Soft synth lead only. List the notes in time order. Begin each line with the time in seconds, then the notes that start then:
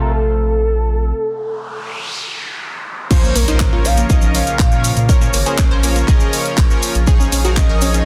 0.01 A#4
0.13 A4
3.11 C5
3.36 A#4
3.85 F5
4.35 F5
5.09 C#5
7.57 D#5
7.82 D#5